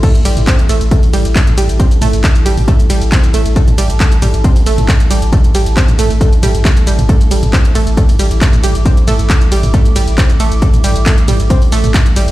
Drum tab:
CC |x---------------|----------------|----------------|----------------|
RD |--x---x---x---x-|--x---x---x---x-|--x---x---x---x-|--x---x---x---x-|
HH |xxoxxxoxxooxxxox|xxoxxxooxxoxxxox|xxoxxxoxxooxxxox|xxoxxxooxxoxxxox|
SH |xxxxxxxxxxxxxxxx|xxxxxxxxxxxxxxxx|xxxxxxxxxxxxxxxx|xxxxxxxxxxxxxxxx|
CP |----x-------x---|----x-------x---|----x-------x---|----x-------x---|
T2 |---o----o----o--|--o----o----o---|-o----o----o----|o----o----o----o|
BD |o---o---o---o---|o---o---o---o---|o---o---o---o---|o---o---o---o---|

CC |----------------|----------------|----------------|
RD |--x---x---x---x-|--x---x---x---x-|--x---x---x---x-|
HH |xxoxxxoxxooxxxox|xxoxxxooxxoxxxox|xxoxxxoxxooxxxox|
SH |xxxxxxxxxxxxxxxx|xxxxxxxxxxxxxxxx|xxxxxxxxxxxxxxxx|
CP |----x-------x---|----x-------x---|----x-------x---|
T2 |---o----o----o--|--o----o----o---|-o----o----o----|
BD |o---o---o---o---|o---o---o---o---|o---o---o---o---|